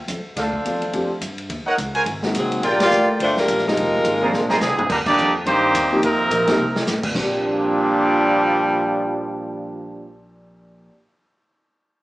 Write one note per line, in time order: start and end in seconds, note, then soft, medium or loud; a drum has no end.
0.08 0.24 F2 medium
0.08 kick soft
0.08 hi-hat pedal medium
0.08 ride medium
0.25 muted upright bass stroke soft
0.36 0.64 D2 medium
0.36 1.15 D4 medium
0.36 1.15 A4 medium
0.36 1.15 C5 medium
0.36 1.15 F5 medium
0.36 kick soft
0.36 snare soft
0.36 ride medium
0.53 kick medium
0.65 0.92 E2 medium
0.65 0.80 F3 medium
0.65 0.81 A3 medium
0.65 0.80 C4 soft
0.65 0.81 D4 soft
0.65 0.81 F4 medium
0.65 kick soft
0.65 hi-hat pedal soft
0.65 ride medium
0.82 ride soft
0.92 1.09 F2 medium
0.92 1.09 F3 medium
0.92 1.08 A3 medium
0.92 1.09 C4 medium
0.92 1.09 D4 medium
0.92 1.09 G4 medium
0.92 kick soft
0.92 ride medium
1.09 muted upright bass stroke soft
1.21 1.49 G2 medium
1.21 kick soft
1.21 hi-hat pedal medium
1.21 ride medium
1.38 ride soft
1.50 1.65 D#2 medium
1.50 kick soft
1.50 ride medium
1.66 1.74 D#4 medium
1.66 1.74 A#4 medium
1.66 1.74 C#5 medium
1.66 1.74 F#5 loud
1.66 muted upright bass stroke soft
1.78 2.05 C#2 loud
1.78 kick soft
1.78 hi-hat pedal medium
1.78 ride medium
1.94 2.02 F#4 medium
1.94 2.02 A#4 medium
1.94 2.03 C5 medium
1.94 2.02 G#5 loud
1.94 ride soft
2.06 2.34 G#1 medium
2.06 kick soft
2.06 ride medium
2.23 2.61 G#3 medium
2.23 2.61 A#3 medium
2.23 2.61 C4 medium
2.23 2.61 D#4 medium
2.23 2.61 F#4 medium
2.23 snare medium
2.34 2.62 C2 medium
2.34 2.62 F#3 medium
2.34 2.62 C4 medium
2.34 2.63 D#4 medium
2.34 2.63 G#4 medium
2.34 kick soft
2.34 hi-hat pedal medium
2.34 ride medium
2.52 ride medium
2.62 2.90 A#1 medium
2.62 2.81 G3 medium
2.62 2.81 D4 medium
2.62 3.41 F4 loud
2.62 2.80 F4 medium
2.62 3.41 A#4 medium
2.62 2.81 A#4 medium
2.62 3.41 D5 medium
2.62 3.41 G5 loud
2.62 kick soft
2.62 ride medium
2.80 3.07 A#3 medium
2.80 3.07 F4 loud
2.80 3.07 G4 medium
2.80 3.07 D5 loud
2.80 snare medium
2.80 ride medium
2.91 3.19 A1 medium
2.91 hi-hat pedal medium
3.19 3.47 G1 medium
3.19 3.36 A3 medium
3.19 3.36 D4 medium
3.19 3.36 F4 medium
3.19 3.36 C5 loud
3.19 kick soft
3.19 ride medium
3.37 3.66 G3 medium
3.37 3.66 D4 medium
3.37 3.65 F4 medium
3.37 3.66 A#4 medium
3.37 snare medium
3.48 3.76 A#1 medium
3.48 kick soft
3.48 hi-hat pedal medium
3.48 ride medium
3.58 snare soft
3.65 4.58 C3 medium
3.65 4.29 D#3 medium
3.65 4.03 F3 medium
3.65 4.03 G#3 medium
3.65 4.59 G#3 medium
3.65 4.58 A#3 medium
3.65 4.03 C4 medium
3.65 4.04 D#4 medium
3.65 4.30 D#4 medium
3.65 4.58 F4 medium
3.65 4.04 G4 medium
3.65 4.59 A#4 loud
3.65 snare medium
3.76 4.04 F1 medium
3.76 kick soft
3.76 ride medium
4.05 4.32 G#1 medium
4.05 kick soft
4.05 hi-hat pedal soft
4.05 ride medium
4.21 4.60 F3 medium
4.21 4.60 A#3 medium
4.21 4.60 C4 medium
4.21 4.60 D4 medium
4.21 4.30 G#4 medium
4.21 4.60 G#4 medium
4.21 4.29 C5 medium
4.21 4.30 D5 medium
4.21 4.30 A#5 loud
4.33 4.60 A#1 medium
4.33 snare soft
4.49 4.57 G#4 loud
4.49 4.57 C5 medium
4.49 4.57 D5 medium
4.49 4.57 A#5 loud
4.49 snare medium
4.61 4.77 C2 loud
4.61 4.88 D3 medium
4.61 4.88 F3 medium
4.61 4.89 G#3 medium
4.61 4.87 C4 medium
4.61 4.88 D4 medium
4.61 4.88 G#4 medium
4.61 snare medium
4.61 hi-hat pedal medium
4.78 muted upright bass stroke soft
4.78 floor tom medium
4.89 5.17 D#2 medium
4.89 4.97 D3 loud
4.89 4.97 G3 medium
4.89 4.98 G3 medium
4.89 4.97 A#3 medium
4.89 4.97 D4 medium
4.89 4.98 D#4 medium
4.89 4.98 A#4 loud
4.89 kick medium
4.89 crash medium
5.06 5.34 G3 medium
5.06 5.33 A#3 medium
5.06 5.33 D4 loud
5.06 5.33 D#4 loud
5.06 5.33 G4 loud
5.06 5.33 D5 loud
5.06 kick medium
5.06 crash medium
5.18 5.45 F2 loud
5.18 hi-hat pedal soft
5.46 5.74 G2 medium
5.46 5.99 D#3 loud
5.46 5.99 G3 loud
5.46 5.99 A#3 loud
5.46 5.99 C4 medium
5.46 5.99 D#4 medium
5.46 5.99 G4 loud
5.46 6.00 C5 loud
5.46 kick soft
5.46 ride medium
5.74 6.02 D#2 medium
5.74 kick soft
5.74 hi-hat pedal medium
5.74 ride medium
5.92 6.02 F3 medium
5.92 6.02 A#3 medium
5.92 6.02 C4 medium
5.92 6.02 D#4 medium
5.92 6.02 G4 medium
6.01 6.30 F2 loud
6.01 6.83 C3 medium
6.01 6.83 D#3 medium
6.01 6.83 A#3 medium
6.01 6.84 C4 medium
6.01 6.84 D#4 medium
6.01 6.84 A#4 loud
6.01 kick soft
6.01 ride medium
6.31 6.57 A#1 loud
6.31 kick soft
6.31 hi-hat pedal medium
6.31 ride medium
6.47 6.58 F3 medium
6.47 6.58 A#3 medium
6.47 6.58 C4 medium
6.47 6.58 D#4 medium
6.47 6.58 G4 medium
6.47 snare medium
6.47 ride medium
6.58 6.86 C2 medium
6.76 snare medium
6.87 7.14 A1 loud
6.87 snare medium
6.87 hi-hat pedal medium
7.03 kick medium
7.03 crash medium
7.09 10.88 A#2 medium
7.09 10.89 A#3 medium
7.15 10.87 A#1 medium
7.15 10.17 A#2 loud
7.15 10.17 F3 loud
7.15 10.17 G3 loud
7.15 10.91 C4 medium
7.15 10.17 D4 loud
7.15 10.92 D4 medium
7.15 kick loud
7.15 splash medium
7.21 10.94 G4 medium